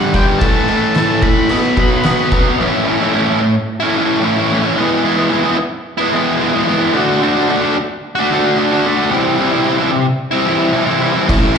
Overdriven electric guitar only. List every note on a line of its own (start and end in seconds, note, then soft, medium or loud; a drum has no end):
0.00 0.12 G2 medium
0.00 0.12 D3 loud
0.00 0.13 G3 loud
0.13 0.39 G2 loud
0.13 0.39 D3 medium
0.13 0.39 G3 loud
0.41 0.67 A2 medium
0.41 0.68 E3 loud
0.41 0.68 A3 loud
0.68 0.95 A2 medium
0.68 0.96 E3 medium
0.68 0.97 A3 medium
0.97 1.21 A2 medium
0.97 1.22 E3 medium
0.97 1.22 A3 loud
1.22 1.48 A2 loud
1.22 1.49 E3 loud
1.22 1.49 A3 loud
1.50 1.76 B2 medium
1.50 1.77 F#3 loud
1.50 1.77 B3 loud
1.77 2.03 B2 medium
1.77 2.04 F#3 loud
1.77 2.04 B3 medium
2.04 2.31 B2 medium
2.04 2.31 F#3 medium
2.04 2.32 B3 medium
2.32 2.58 B2 medium
2.32 2.58 F#3 medium
2.32 2.58 B3 loud
2.59 3.12 A2 medium
2.59 2.85 E3 loud
2.59 2.85 A3 loud
2.59 2.86 C#4 loud
2.59 2.88 E4 loud
2.85 3.13 E3 medium
2.85 3.04 A3 medium
2.85 3.02 C#4 medium
2.85 3.00 E4 medium
3.01 3.13 A3 medium
3.01 3.14 C#4 medium
3.01 3.15 E4 medium
3.13 3.54 A2 loud
3.13 3.40 E3 medium
3.13 3.27 A3 loud
3.13 3.25 C#4 loud
3.13 3.24 E4 loud
3.25 3.40 A3 medium
3.25 3.40 C#4 medium
3.25 3.41 E4 medium
3.40 muted overdriven electric guitar stroke soft
3.80 3.94 A3 medium
3.80 3.95 C#4 medium
3.80 3.97 E4 medium
3.93 4.21 E3 medium
3.93 4.21 A3 medium
3.93 4.23 C#4 medium
3.98 4.23 E4 medium
4.20 4.62 A2 loud
4.20 4.49 E3 loud
4.20 4.39 A3 loud
4.20 4.38 C#4 loud
4.24 4.35 E4 loud
4.36 4.51 A3 medium
4.36 4.53 C#4 medium
4.36 4.53 E4 medium
4.51 4.75 E3 medium
4.51 4.64 A3 medium
4.51 4.63 C#4 medium
4.51 4.61 E4 medium
4.62 4.77 A3 medium
4.62 4.76 C#4 medium
4.62 4.75 E4 medium
4.76 5.01 E3 loud
4.76 5.02 G#3 medium
4.76 5.04 B3 loud
4.76 5.05 E4 loud
5.02 5.29 E3 medium
5.02 5.19 G#3 medium
5.02 5.17 B3 medium
5.06 5.15 E4 medium
5.16 5.31 B3 medium
5.16 5.32 E4 medium
5.20 5.30 G#3 medium
5.30 5.56 E3 medium
5.30 5.45 G#3 loud
5.30 5.44 B3 loud
5.30 5.42 E4 loud
5.43 5.57 G#3 medium
5.43 5.57 B3 medium
5.43 5.57 E4 medium
5.57 muted overdriven electric guitar stroke soft
5.98 6.13 B3 medium
5.98 6.14 E4 medium
6.02 6.12 G#3 medium
6.12 6.38 E3 medium
6.12 6.40 G#3 medium
6.12 6.41 B3 medium
6.12 6.42 E4 medium
6.40 6.65 E3 loud
6.40 6.55 G#3 loud
6.40 6.53 B3 loud
6.40 6.52 E4 loud
6.53 6.66 G#3 medium
6.53 6.67 B3 medium
6.53 6.68 E4 medium
6.66 6.92 E3 medium
6.66 6.82 G#3 medium
6.66 6.80 B3 loud
6.66 6.78 E4 medium
6.79 6.93 B3 medium
6.79 6.92 E4 medium
6.83 6.93 G#3 medium
6.92 7.18 D3 medium
6.92 7.20 A3 loud
6.92 7.22 D4 loud
6.92 7.23 F#4 medium
7.19 7.47 D3 medium
7.19 7.37 A3 medium
7.19 7.34 D4 medium
7.24 7.32 F#4 loud
7.33 7.49 D4 medium
7.33 7.50 F#4 medium
7.38 7.48 A3 medium
7.48 7.75 D3 loud
7.48 7.64 A3 loud
7.48 7.61 D4 loud
7.48 7.60 F#4 loud
7.61 7.75 A3 medium
7.61 7.76 D4 medium
7.61 7.76 F#4 medium
7.77 muted overdriven electric guitar stroke soft
8.15 8.32 D4 medium
8.15 8.34 F#4 medium
8.20 8.31 A3 medium
8.30 8.54 D3 medium
8.30 8.55 A3 medium
8.30 8.57 D4 medium
8.35 8.58 F#4 medium
8.55 8.83 D3 loud
8.55 8.73 A3 loud
8.55 8.71 D4 loud
8.59 8.70 F#4 loud
8.71 8.84 A3 medium
8.71 8.86 D4 medium
8.71 8.86 F#4 medium
8.84 9.10 D3 medium
8.84 8.98 A3 medium
8.84 8.97 D4 medium
8.84 8.94 F#4 medium
8.95 9.11 A3 medium
8.95 9.10 D4 medium
8.95 9.09 F#4 medium
9.09 9.62 C3 medium
9.09 9.37 E3 medium
9.09 9.38 G3 medium
9.09 9.39 C4 medium
9.13 9.41 E4 loud
9.38 9.65 E3 medium
9.38 9.54 G3 medium
9.38 9.52 C4 medium
9.38 9.50 E4 medium
9.51 9.66 C4 medium
9.51 9.67 E4 medium
9.55 9.65 G3 medium
9.64 10.06 C3 medium
9.64 9.90 E3 loud
9.64 9.80 G3 loud
9.64 9.79 C4 loud
9.68 9.77 E4 loud
9.78 9.89 G3 medium
9.78 9.90 C4 medium
9.78 9.91 E4 medium
9.90 muted overdriven electric guitar stroke soft
10.31 10.45 G3 medium
10.31 10.47 C4 medium
10.31 10.48 E4 medium
10.45 10.73 E3 medium
10.45 10.73 G3 medium
10.45 10.75 C4 medium
10.45 10.76 E4 medium
10.72 11.14 C3 loud
10.72 11.00 E3 loud
10.72 10.88 G3 loud
10.72 10.86 C4 loud
10.72 10.86 E4 loud
10.86 11.01 G3 medium
10.86 11.03 C4 medium
10.86 11.04 E4 medium
11.00 11.26 E3 medium
11.00 11.15 G3 medium
11.00 11.14 C4 medium
11.05 11.13 E4 loud
11.13 11.28 G3 medium
11.13 11.27 C4 medium
11.13 11.29 E4 medium
11.26 11.58 A2 loud
11.26 11.53 E3 loud
11.26 11.53 A3 medium
11.26 11.54 C#4 loud
11.26 11.56 E4 loud
11.53 11.58 E3 medium
11.53 11.58 A3 medium